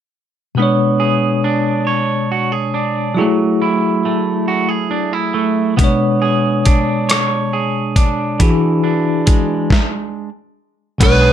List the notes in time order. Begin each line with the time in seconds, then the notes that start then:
0.55 B2 G#3 B3
0.59 D4 C#5
1.00 G#4
1.44 D4
1.87 C#5
2.32 F#4
2.52 G#4
2.74 D4
3.15 F#3 E4
3.19 A3 G#4
3.62 E4
4.05 A3
4.48 F#4
4.69 G#4
4.91 D4
5.13 E4
5.34 A3
5.77 B2 G#3 B3, kick, closed hi-hat
5.81 D4 C#5
6.22 G#4
6.65 D4, kick, closed hi-hat
7.09 C#5, cross-stick, closed hi-hat
7.53 G#4
7.96 D4, kick, closed hi-hat
8.40 E3 D4 F#4 G#4, kick, closed hi-hat
8.84 D4
9.26 G#3, kick, closed hi-hat
9.70 kick, snare
10.98 B1 B2 G#3 B3, kick, closed hi-hat, crash
11.03 D4 B4 C#5
11.21 G#4